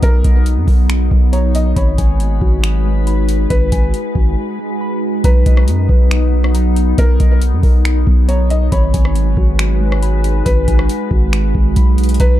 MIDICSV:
0, 0, Header, 1, 6, 480
1, 0, Start_track
1, 0, Tempo, 434783
1, 28, Time_signature, 4, 2, 24, 8
1, 13687, End_track
2, 0, Start_track
2, 0, Title_t, "Synth keys"
2, 0, Program_c, 0, 88
2, 0, Note_on_c, 0, 59, 76
2, 0, Note_on_c, 0, 71, 82
2, 32, Note_on_c, 0, 82, 101
2, 268, Note_off_c, 0, 71, 0
2, 272, Note_on_c, 0, 75, 87
2, 744, Note_off_c, 0, 59, 0
2, 747, Note_on_c, 0, 70, 81
2, 1230, Note_on_c, 0, 59, 67
2, 1454, Note_off_c, 0, 82, 0
2, 1467, Note_on_c, 0, 82, 94
2, 1709, Note_off_c, 0, 75, 0
2, 1945, Note_on_c, 0, 83, 105
2, 1947, Note_off_c, 0, 70, 0
2, 1947, Note_off_c, 0, 82, 0
2, 1948, Note_off_c, 0, 59, 0
2, 2187, Note_on_c, 0, 80, 85
2, 2673, Note_on_c, 0, 66, 88
2, 3147, Note_on_c, 0, 56, 78
2, 3376, Note_off_c, 0, 83, 0
2, 3389, Note_on_c, 0, 83, 93
2, 3627, Note_off_c, 0, 80, 0
2, 3849, Note_off_c, 0, 83, 0
2, 3862, Note_on_c, 0, 83, 102
2, 4106, Note_on_c, 0, 80, 82
2, 4110, Note_off_c, 0, 66, 0
2, 4583, Note_on_c, 0, 66, 72
2, 4587, Note_off_c, 0, 56, 0
2, 5068, Note_on_c, 0, 56, 69
2, 5295, Note_off_c, 0, 83, 0
2, 5308, Note_on_c, 0, 83, 90
2, 5547, Note_off_c, 0, 80, 0
2, 5785, Note_off_c, 0, 66, 0
2, 5787, Note_off_c, 0, 56, 0
2, 5788, Note_off_c, 0, 83, 0
2, 5789, Note_on_c, 0, 82, 108
2, 6031, Note_on_c, 0, 75, 88
2, 6507, Note_on_c, 0, 71, 89
2, 6979, Note_on_c, 0, 59, 79
2, 7211, Note_off_c, 0, 82, 0
2, 7224, Note_on_c, 0, 82, 95
2, 7469, Note_off_c, 0, 75, 0
2, 7698, Note_off_c, 0, 82, 0
2, 7711, Note_on_c, 0, 82, 101
2, 7947, Note_off_c, 0, 71, 0
2, 7952, Note_on_c, 0, 75, 84
2, 8423, Note_off_c, 0, 59, 0
2, 8426, Note_on_c, 0, 70, 88
2, 8909, Note_on_c, 0, 59, 70
2, 9134, Note_off_c, 0, 82, 0
2, 9148, Note_on_c, 0, 82, 94
2, 9389, Note_off_c, 0, 75, 0
2, 9625, Note_on_c, 0, 83, 109
2, 9627, Note_off_c, 0, 70, 0
2, 9627, Note_off_c, 0, 82, 0
2, 9628, Note_off_c, 0, 59, 0
2, 9865, Note_on_c, 0, 80, 86
2, 10353, Note_on_c, 0, 66, 89
2, 10825, Note_on_c, 0, 56, 73
2, 11055, Note_off_c, 0, 83, 0
2, 11068, Note_on_c, 0, 83, 98
2, 11306, Note_off_c, 0, 80, 0
2, 11529, Note_off_c, 0, 83, 0
2, 11543, Note_on_c, 0, 83, 109
2, 11785, Note_on_c, 0, 80, 90
2, 11790, Note_off_c, 0, 66, 0
2, 12262, Note_on_c, 0, 66, 75
2, 12266, Note_off_c, 0, 56, 0
2, 12748, Note_on_c, 0, 56, 78
2, 12975, Note_off_c, 0, 83, 0
2, 12989, Note_on_c, 0, 83, 95
2, 13226, Note_off_c, 0, 80, 0
2, 13465, Note_off_c, 0, 66, 0
2, 13467, Note_off_c, 0, 56, 0
2, 13468, Note_off_c, 0, 83, 0
2, 13468, Note_on_c, 0, 82, 107
2, 13687, Note_off_c, 0, 82, 0
2, 13687, End_track
3, 0, Start_track
3, 0, Title_t, "Felt piano"
3, 0, Program_c, 1, 0
3, 32, Note_on_c, 1, 70, 105
3, 481, Note_off_c, 1, 70, 0
3, 1465, Note_on_c, 1, 73, 85
3, 1694, Note_off_c, 1, 73, 0
3, 1712, Note_on_c, 1, 75, 88
3, 1938, Note_off_c, 1, 75, 0
3, 1958, Note_on_c, 1, 73, 88
3, 3829, Note_off_c, 1, 73, 0
3, 3866, Note_on_c, 1, 71, 107
3, 4318, Note_off_c, 1, 71, 0
3, 5789, Note_on_c, 1, 71, 107
3, 7664, Note_off_c, 1, 71, 0
3, 7713, Note_on_c, 1, 70, 105
3, 8161, Note_off_c, 1, 70, 0
3, 9147, Note_on_c, 1, 73, 89
3, 9375, Note_off_c, 1, 73, 0
3, 9388, Note_on_c, 1, 75, 93
3, 9616, Note_off_c, 1, 75, 0
3, 9633, Note_on_c, 1, 73, 89
3, 11506, Note_off_c, 1, 73, 0
3, 11543, Note_on_c, 1, 71, 105
3, 11996, Note_off_c, 1, 71, 0
3, 13471, Note_on_c, 1, 71, 115
3, 13687, Note_off_c, 1, 71, 0
3, 13687, End_track
4, 0, Start_track
4, 0, Title_t, "Ambient pad"
4, 0, Program_c, 2, 92
4, 0, Note_on_c, 2, 54, 75
4, 0, Note_on_c, 2, 59, 69
4, 0, Note_on_c, 2, 63, 81
4, 1908, Note_off_c, 2, 54, 0
4, 1909, Note_off_c, 2, 59, 0
4, 1948, Note_on_c, 2, 71, 88
4, 1950, Note_on_c, 2, 56, 77
4, 1950, Note_on_c, 2, 66, 71
4, 5744, Note_off_c, 2, 63, 0
4, 5749, Note_off_c, 2, 71, 0
4, 5750, Note_off_c, 2, 56, 0
4, 5750, Note_off_c, 2, 66, 0
4, 5787, Note_on_c, 2, 54, 77
4, 5787, Note_on_c, 2, 59, 72
4, 5788, Note_on_c, 2, 63, 89
4, 9589, Note_off_c, 2, 54, 0
4, 9589, Note_off_c, 2, 59, 0
4, 9589, Note_off_c, 2, 63, 0
4, 9628, Note_on_c, 2, 56, 80
4, 9628, Note_on_c, 2, 63, 70
4, 9628, Note_on_c, 2, 66, 74
4, 9629, Note_on_c, 2, 71, 91
4, 13429, Note_off_c, 2, 56, 0
4, 13429, Note_off_c, 2, 66, 0
4, 13430, Note_off_c, 2, 71, 0
4, 13471, Note_on_c, 2, 54, 81
4, 13471, Note_on_c, 2, 59, 73
4, 13687, Note_off_c, 2, 54, 0
4, 13687, Note_off_c, 2, 59, 0
4, 13687, Note_off_c, 2, 63, 0
4, 13687, End_track
5, 0, Start_track
5, 0, Title_t, "808-style bass"
5, 0, Program_c, 3, 38
5, 28, Note_on_c, 3, 35, 109
5, 258, Note_off_c, 3, 35, 0
5, 270, Note_on_c, 3, 35, 109
5, 626, Note_on_c, 3, 42, 99
5, 643, Note_off_c, 3, 35, 0
5, 741, Note_off_c, 3, 42, 0
5, 746, Note_on_c, 3, 35, 104
5, 1207, Note_off_c, 3, 35, 0
5, 1230, Note_on_c, 3, 35, 105
5, 1920, Note_off_c, 3, 35, 0
5, 1948, Note_on_c, 3, 32, 113
5, 2178, Note_off_c, 3, 32, 0
5, 2191, Note_on_c, 3, 32, 99
5, 2650, Note_off_c, 3, 32, 0
5, 2667, Note_on_c, 3, 32, 106
5, 3823, Note_off_c, 3, 32, 0
5, 3868, Note_on_c, 3, 32, 113
5, 4098, Note_off_c, 3, 32, 0
5, 4110, Note_on_c, 3, 32, 105
5, 4339, Note_off_c, 3, 32, 0
5, 4585, Note_on_c, 3, 32, 104
5, 4817, Note_off_c, 3, 32, 0
5, 5788, Note_on_c, 3, 35, 117
5, 6018, Note_off_c, 3, 35, 0
5, 6030, Note_on_c, 3, 35, 103
5, 6268, Note_on_c, 3, 42, 101
5, 6284, Note_off_c, 3, 35, 0
5, 6495, Note_off_c, 3, 42, 0
5, 6506, Note_on_c, 3, 35, 107
5, 7662, Note_off_c, 3, 35, 0
5, 7707, Note_on_c, 3, 35, 120
5, 7938, Note_off_c, 3, 35, 0
5, 7950, Note_on_c, 3, 35, 110
5, 8308, Note_on_c, 3, 42, 100
5, 8324, Note_off_c, 3, 35, 0
5, 8418, Note_off_c, 3, 42, 0
5, 8425, Note_on_c, 3, 35, 110
5, 8887, Note_off_c, 3, 35, 0
5, 8909, Note_on_c, 3, 35, 104
5, 9599, Note_off_c, 3, 35, 0
5, 9628, Note_on_c, 3, 32, 114
5, 9858, Note_off_c, 3, 32, 0
5, 9870, Note_on_c, 3, 32, 109
5, 10330, Note_off_c, 3, 32, 0
5, 10346, Note_on_c, 3, 32, 103
5, 11502, Note_off_c, 3, 32, 0
5, 11548, Note_on_c, 3, 32, 115
5, 11778, Note_off_c, 3, 32, 0
5, 11791, Note_on_c, 3, 32, 105
5, 12020, Note_off_c, 3, 32, 0
5, 12266, Note_on_c, 3, 32, 105
5, 12727, Note_off_c, 3, 32, 0
5, 12749, Note_on_c, 3, 32, 99
5, 12978, Note_off_c, 3, 32, 0
5, 12989, Note_on_c, 3, 35, 106
5, 13449, Note_off_c, 3, 35, 0
5, 13467, Note_on_c, 3, 35, 115
5, 13687, Note_off_c, 3, 35, 0
5, 13687, End_track
6, 0, Start_track
6, 0, Title_t, "Drums"
6, 28, Note_on_c, 9, 36, 108
6, 28, Note_on_c, 9, 42, 82
6, 138, Note_off_c, 9, 36, 0
6, 139, Note_off_c, 9, 42, 0
6, 270, Note_on_c, 9, 42, 81
6, 271, Note_on_c, 9, 36, 105
6, 380, Note_off_c, 9, 42, 0
6, 381, Note_off_c, 9, 36, 0
6, 508, Note_on_c, 9, 42, 72
6, 618, Note_off_c, 9, 42, 0
6, 746, Note_on_c, 9, 36, 100
6, 748, Note_on_c, 9, 46, 44
6, 856, Note_off_c, 9, 36, 0
6, 859, Note_off_c, 9, 46, 0
6, 989, Note_on_c, 9, 26, 103
6, 990, Note_on_c, 9, 42, 70
6, 1100, Note_off_c, 9, 26, 0
6, 1100, Note_off_c, 9, 42, 0
6, 1229, Note_on_c, 9, 36, 98
6, 1339, Note_off_c, 9, 36, 0
6, 1468, Note_on_c, 9, 42, 74
6, 1578, Note_off_c, 9, 42, 0
6, 1708, Note_on_c, 9, 42, 74
6, 1819, Note_off_c, 9, 42, 0
6, 1948, Note_on_c, 9, 36, 109
6, 1949, Note_on_c, 9, 42, 82
6, 2059, Note_off_c, 9, 36, 0
6, 2059, Note_off_c, 9, 42, 0
6, 2190, Note_on_c, 9, 42, 81
6, 2191, Note_on_c, 9, 36, 103
6, 2300, Note_off_c, 9, 42, 0
6, 2301, Note_off_c, 9, 36, 0
6, 2429, Note_on_c, 9, 42, 75
6, 2539, Note_off_c, 9, 42, 0
6, 2666, Note_on_c, 9, 36, 105
6, 2777, Note_off_c, 9, 36, 0
6, 2910, Note_on_c, 9, 26, 103
6, 2910, Note_on_c, 9, 42, 67
6, 3021, Note_off_c, 9, 26, 0
6, 3021, Note_off_c, 9, 42, 0
6, 3389, Note_on_c, 9, 42, 73
6, 3500, Note_off_c, 9, 42, 0
6, 3628, Note_on_c, 9, 42, 77
6, 3738, Note_off_c, 9, 42, 0
6, 3868, Note_on_c, 9, 36, 110
6, 3868, Note_on_c, 9, 42, 81
6, 3978, Note_off_c, 9, 36, 0
6, 3978, Note_off_c, 9, 42, 0
6, 4108, Note_on_c, 9, 42, 84
6, 4110, Note_on_c, 9, 36, 102
6, 4218, Note_off_c, 9, 42, 0
6, 4220, Note_off_c, 9, 36, 0
6, 4347, Note_on_c, 9, 42, 74
6, 4458, Note_off_c, 9, 42, 0
6, 4585, Note_on_c, 9, 36, 102
6, 4696, Note_off_c, 9, 36, 0
6, 5787, Note_on_c, 9, 36, 113
6, 5787, Note_on_c, 9, 42, 85
6, 5898, Note_off_c, 9, 36, 0
6, 5898, Note_off_c, 9, 42, 0
6, 6028, Note_on_c, 9, 42, 81
6, 6030, Note_on_c, 9, 36, 106
6, 6139, Note_off_c, 9, 42, 0
6, 6140, Note_off_c, 9, 36, 0
6, 6152, Note_on_c, 9, 37, 93
6, 6263, Note_off_c, 9, 37, 0
6, 6267, Note_on_c, 9, 42, 78
6, 6378, Note_off_c, 9, 42, 0
6, 6505, Note_on_c, 9, 36, 104
6, 6615, Note_off_c, 9, 36, 0
6, 6748, Note_on_c, 9, 26, 109
6, 6749, Note_on_c, 9, 42, 67
6, 6859, Note_off_c, 9, 26, 0
6, 6859, Note_off_c, 9, 42, 0
6, 7112, Note_on_c, 9, 37, 86
6, 7223, Note_off_c, 9, 37, 0
6, 7227, Note_on_c, 9, 42, 76
6, 7338, Note_off_c, 9, 42, 0
6, 7468, Note_on_c, 9, 42, 78
6, 7578, Note_off_c, 9, 42, 0
6, 7707, Note_on_c, 9, 36, 112
6, 7707, Note_on_c, 9, 42, 85
6, 7817, Note_off_c, 9, 36, 0
6, 7818, Note_off_c, 9, 42, 0
6, 7948, Note_on_c, 9, 42, 78
6, 7949, Note_on_c, 9, 36, 104
6, 8058, Note_off_c, 9, 42, 0
6, 8060, Note_off_c, 9, 36, 0
6, 8186, Note_on_c, 9, 42, 79
6, 8297, Note_off_c, 9, 42, 0
6, 8425, Note_on_c, 9, 36, 107
6, 8427, Note_on_c, 9, 46, 44
6, 8535, Note_off_c, 9, 36, 0
6, 8537, Note_off_c, 9, 46, 0
6, 8669, Note_on_c, 9, 26, 108
6, 8669, Note_on_c, 9, 42, 69
6, 8779, Note_off_c, 9, 26, 0
6, 8780, Note_off_c, 9, 42, 0
6, 8909, Note_on_c, 9, 36, 99
6, 9019, Note_off_c, 9, 36, 0
6, 9148, Note_on_c, 9, 42, 75
6, 9259, Note_off_c, 9, 42, 0
6, 9388, Note_on_c, 9, 42, 74
6, 9499, Note_off_c, 9, 42, 0
6, 9628, Note_on_c, 9, 36, 110
6, 9628, Note_on_c, 9, 42, 85
6, 9738, Note_off_c, 9, 36, 0
6, 9739, Note_off_c, 9, 42, 0
6, 9869, Note_on_c, 9, 42, 86
6, 9870, Note_on_c, 9, 36, 106
6, 9979, Note_off_c, 9, 42, 0
6, 9981, Note_off_c, 9, 36, 0
6, 9992, Note_on_c, 9, 37, 92
6, 10102, Note_off_c, 9, 37, 0
6, 10107, Note_on_c, 9, 42, 79
6, 10217, Note_off_c, 9, 42, 0
6, 10345, Note_on_c, 9, 36, 102
6, 10456, Note_off_c, 9, 36, 0
6, 10589, Note_on_c, 9, 26, 108
6, 10589, Note_on_c, 9, 42, 70
6, 10699, Note_off_c, 9, 26, 0
6, 10700, Note_off_c, 9, 42, 0
6, 10953, Note_on_c, 9, 37, 89
6, 11063, Note_off_c, 9, 37, 0
6, 11068, Note_on_c, 9, 42, 81
6, 11178, Note_off_c, 9, 42, 0
6, 11307, Note_on_c, 9, 42, 78
6, 11418, Note_off_c, 9, 42, 0
6, 11548, Note_on_c, 9, 36, 107
6, 11548, Note_on_c, 9, 42, 85
6, 11658, Note_off_c, 9, 36, 0
6, 11658, Note_off_c, 9, 42, 0
6, 11789, Note_on_c, 9, 42, 84
6, 11790, Note_on_c, 9, 36, 104
6, 11900, Note_off_c, 9, 42, 0
6, 11901, Note_off_c, 9, 36, 0
6, 11912, Note_on_c, 9, 37, 90
6, 12023, Note_off_c, 9, 37, 0
6, 12027, Note_on_c, 9, 42, 77
6, 12138, Note_off_c, 9, 42, 0
6, 12265, Note_on_c, 9, 36, 104
6, 12376, Note_off_c, 9, 36, 0
6, 12508, Note_on_c, 9, 26, 109
6, 12508, Note_on_c, 9, 42, 70
6, 12618, Note_off_c, 9, 26, 0
6, 12618, Note_off_c, 9, 42, 0
6, 12748, Note_on_c, 9, 36, 100
6, 12859, Note_off_c, 9, 36, 0
6, 12986, Note_on_c, 9, 42, 77
6, 12989, Note_on_c, 9, 36, 95
6, 13096, Note_off_c, 9, 42, 0
6, 13099, Note_off_c, 9, 36, 0
6, 13227, Note_on_c, 9, 42, 68
6, 13287, Note_off_c, 9, 42, 0
6, 13287, Note_on_c, 9, 42, 67
6, 13346, Note_off_c, 9, 42, 0
6, 13346, Note_on_c, 9, 42, 65
6, 13406, Note_off_c, 9, 42, 0
6, 13406, Note_on_c, 9, 42, 66
6, 13466, Note_off_c, 9, 42, 0
6, 13466, Note_on_c, 9, 42, 86
6, 13467, Note_on_c, 9, 36, 112
6, 13577, Note_off_c, 9, 42, 0
6, 13578, Note_off_c, 9, 36, 0
6, 13687, End_track
0, 0, End_of_file